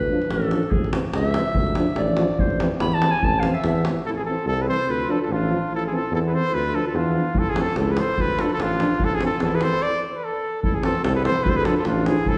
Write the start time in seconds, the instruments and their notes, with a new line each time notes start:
Already playing: tuba D2, clarinet B4
0.11 euphonium F3 D4
0.22 davul high
0.30 tuba A1, clarinet A4, davul high
0.42 davul high
0.51 euphonium F3 D4, davul high
0.63 davul high
0.71 tuba A1, clarinet G#4, davul low
0.84 davul high
0.93 euphonium E3 C4, davul high
1.14 tuba C#2, clarinet E5, davul high
1.25 davul high
1.34 euphonium E3 C4, davul high
1.55 tuba D2, davul low
1.67 davul high
1.75 euphonium F3 D4, davul high
1.96 tuba A1, clarinet D5, davul high
2.08 davul high
2.17 euphonium F3 D4, davul high
2.38 tuba A1, clarinet C5, davul low
2.50 davul high
2.60 euphonium E3 C4, davul high
2.80 tuba E2, clarinet B5, davul high
2.92 clarinet A5, davul high
3.02 euphonium E3 C4, davul high
3.11 clarinet G#5
3.22 tuba A1, clarinet A5, davul low
3.34 davul high
3.40 euphonium E3, clarinet F5, davul high
3.44 euphonium C4
3.54 clarinet E5, davul high
3.63 tuba E2, davul high
3.68 clarinet E5
3.76 davul high
3.85 euphonium E3 C4, davul high
4.05 tuba A1, trumpet A4
4.10 clarinet E4
4.16 clarinet E4, trumpet G#4
4.25 euphonium E3 C4, trumpet A4
4.30 clarinet F4
4.46 tuba C2, clarinet E4, trumpet A4
4.62 clarinet G#4, trumpet B4
4.68 euphonium E3 C4, clarinet A4, trumpet C5
4.87 tuba D2, clarinet F4, trumpet B4
5.08 euphonium F3 D4, clarinet F4, trumpet A4
5.22 clarinet F4, trumpet A4
5.28 tuba A1
5.32 clarinet D4, trumpet F4
5.50 euphonium F3 D4
5.70 tuba A1, clarinet E4
5.75 trumpet A4
5.87 clarinet E4, trumpet G#4
5.91 euphonium E3 C4
5.96 clarinet F4, trumpet A4
6.11 tuba E2, trumpet A4
6.15 clarinet E4
6.26 clarinet G#4, trumpet B4
6.32 euphonium E3 C4, clarinet A4, trumpet C5
6.52 tuba D2, clarinet F4, trumpet B4
6.73 euphonium F3 D4, trumpet A4
6.77 clarinet F4
6.87 clarinet F4, trumpet A4
6.94 tuba E2, clarinet D4, trumpet F4
7.13 euphonium F3 D4
7.35 tuba A1, clarinet E4, davul low
7.39 trumpet A4
7.50 clarinet E4, trumpet G#4
7.55 euphonium E3 C4, clarinet F4, davul high
7.61 trumpet A4
7.67 davul high
7.76 tuba C#2, clarinet E4, trumpet A4, davul high
7.91 clarinet G#4, trumpet B4
7.96 euphonium E3 C4, trumpet C5, davul high
8.01 clarinet A4
8.18 tuba D2, clarinet F4, trumpet B4, davul low
8.37 euphonium F3 D4, clarinet F4, trumpet A4, davul high
8.50 clarinet F4, trumpet A4, davul high
8.59 tuba A1, clarinet D4, trumpet F4, davul high
8.80 euphonium F3 D4, davul high
9.00 tuba A1, davul low
9.04 clarinet E4, trumpet A4
9.15 clarinet E4, trumpet G#4
9.20 euphonium E3 C4, davul high
9.24 clarinet F4, trumpet A4
9.32 davul high
9.40 tuba E2, trumpet A4, davul high
9.46 clarinet E4
9.55 clarinet G#4, trumpet B4
9.61 euphonium E3 C4, clarinet A4, trumpet C5, davul high
9.82 trumpet D5
10.11 trumpet C5
10.16 trumpet B4
10.24 trumpet A4
10.63 tuba A1, clarinet E4, trumpet A4, davul low
10.75 clarinet E4, trumpet G#4
10.83 euphonium E3 C4, clarinet F4, trumpet A4, davul high
10.95 davul high
11.04 tuba C2, clarinet E4, trumpet A4, davul high
11.15 clarinet G#4, trumpet B4
11.24 euphonium E3 C4, clarinet A4, trumpet C5, davul high
11.43 tuba D2, clarinet F4, trumpet B4, davul low
11.49 clarinet A4, trumpet C5
11.56 clarinet G#4, trumpet B4
11.65 euphonium F3 D4, clarinet F4, trumpet A4, davul high
11.76 clarinet F4, trumpet A4, davul high
11.85 tuba A1, clarinet D4, trumpet F4, davul high
12.06 euphonium F3 D4, clarinet E4, trumpet G#4, davul high
12.26 tuba A1, clarinet E4, trumpet A4, davul low